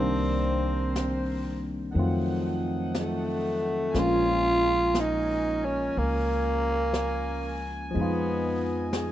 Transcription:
0.00 1.90 C2 medium
0.00 1.93 D#3 soft
0.00 1.96 G3 soft
0.00 1.96 A#3 soft
0.00 1.59 C4 medium
0.00 1.73 C4 medium
0.00 1.96 C4 soft
0.00 1.96 D4 medium
0.00 1.73 A#4 medium
0.00 1.73 C5 medium
0.96 brush sweep soft
0.96 snare soft
0.96 hi-hat pedal medium
1.90 3.90 D#4 medium
1.90 3.91 A4 medium
1.90 3.91 F#5 medium
1.94 3.91 F2 medium
1.94 3.94 D#3 soft
1.94 3.95 F#3 soft
1.94 3.96 A3 soft
1.94 3.96 C4 soft
1.94 brush sweep soft
1.99 3.95 F4 soft
2.94 brush sweep soft
2.94 snare soft
2.94 hi-hat pedal soft
2.99 4.00 A3 medium
3.90 7.74 C#4 medium
3.90 7.74 A#4 medium
3.90 9.12 G#5 medium
3.94 5.90 A#1 medium
3.94 7.89 F3 soft
3.94 7.93 G#3 soft
3.94 7.94 A#3 soft
3.94 7.94 C#4 soft
3.94 7.94 F4 soft
3.94 brush sweep soft
3.94 snare soft
3.99 5.01 F4 medium
4.95 brush sweep soft
4.95 snare soft
4.95 hi-hat pedal medium
5.00 5.67 D#4 medium
5.65 6.00 C#4 medium
5.94 7.91 C#2 medium
5.94 brush sweep soft
5.98 7.77 A#3 medium
6.94 brush sweep soft
6.94 snare soft
6.94 hi-hat pedal soft
7.91 9.12 F3 soft
7.91 9.12 G#3 soft
7.91 9.12 F4 medium
7.91 9.12 D#5 medium
7.91 brush sweep soft
7.95 9.12 F2 medium
7.95 9.12 B3 soft
7.95 8.91 B3 medium
8.00 9.12 D#4 soft
8.00 9.12 F4 medium
8.93 9.12 G#4 soft
8.93 brush sweep soft
8.93 snare soft
8.93 hi-hat pedal soft

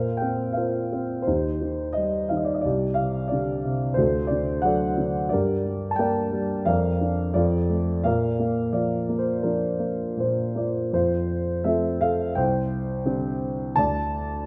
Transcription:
0.00 1.22 A#2 soft
0.00 0.55 A#4 soft
0.00 0.56 C5 soft
0.00 0.20 F5 medium
0.17 0.56 G5 medium
0.21 0.91 C4 soft
0.53 1.24 F4 soft
0.53 1.27 F5 medium
0.57 1.22 A#4 soft
0.57 1.21 C5 soft
0.93 1.26 C4 soft
1.22 1.96 C5 medium
1.27 2.61 D#2 soft
1.27 2.61 D#4 soft
1.27 2.61 G4 soft
1.61 2.29 D#3 soft
1.93 2.29 D#5 medium
1.97 2.63 G3 soft
2.29 2.64 D#3 soft
2.29 2.38 F5 soft
2.37 2.46 D#5 soft
2.45 2.55 D5 medium
2.54 2.64 D#5 medium
2.61 3.94 C2 medium
2.61 2.98 D5 medium
2.66 3.31 G4 soft
2.94 3.31 F5 medium
2.99 3.64 C3 soft
3.28 3.92 D5 medium
3.32 3.96 D3 soft
3.32 3.94 G4 soft
3.65 3.97 C3 soft
3.94 5.27 D2 medium
3.94 5.28 F#4 soft
3.94 4.64 A4 soft
3.94 4.30 C5 medium
4.27 4.64 D5 medium
4.31 4.96 D3 soft
4.62 5.29 F#3 soft
4.62 5.28 A4 medium
4.62 5.28 D5 medium
4.62 5.10 F#5 medium
4.98 5.31 D3 soft
5.29 6.63 G2 medium
5.29 6.64 G4 medium
5.29 5.98 A#4 soft
5.29 5.93 D5 medium
5.65 6.30 G3 soft
5.91 5.98 A5 medium
5.96 6.65 A#3 soft
5.96 6.63 A#4 medium
5.96 6.64 D5 medium
5.96 6.68 G5 medium
6.32 6.66 G3 soft
6.65 7.33 F2 medium
6.65 7.33 A#4 medium
6.65 7.32 D5 medium
6.65 7.37 F5 medium
7.01 7.35 D4 soft
7.34 8.03 F2 medium
7.34 8.01 F4 medium
7.34 8.01 A4 medium
7.34 8.00 D5 medium
7.69 8.03 A3 soft
8.04 10.16 A#2 medium
8.04 9.41 A#4 medium
8.04 8.71 D5 medium
8.04 8.76 F5 medium
8.39 9.08 A#3 soft
8.73 9.42 F3 soft
8.73 9.17 D5 medium
9.09 9.78 A#3 soft
9.19 9.45 C5 medium
9.43 10.89 F3 soft
9.43 10.90 D4 soft
9.43 10.19 F4 soft
9.43 10.15 A#4 soft
9.79 10.54 A#3 soft
10.17 10.90 A#2 soft
10.17 10.55 F4 soft
10.17 10.55 C5 soft
10.55 10.91 A#3 soft
10.55 10.91 F4 soft
10.55 10.95 D5 soft
10.92 12.32 F2 soft
10.92 11.61 F4 soft
10.92 11.67 C5 medium
11.64 12.34 F3 soft
11.64 12.34 A3 soft
11.64 12.34 C4 soft
11.64 11.99 A4 medium
11.64 12.02 E5 medium
12.01 12.35 A4 medium
12.01 12.38 F5 medium
12.35 13.72 C2 medium
12.35 13.38 C5 medium
12.35 13.37 G5 medium
13.05 13.74 D3 soft
13.05 13.74 G3 soft
13.05 13.74 C4 soft
13.76 14.46 D2 medium
13.76 14.46 D5 medium
13.76 14.46 A5 medium

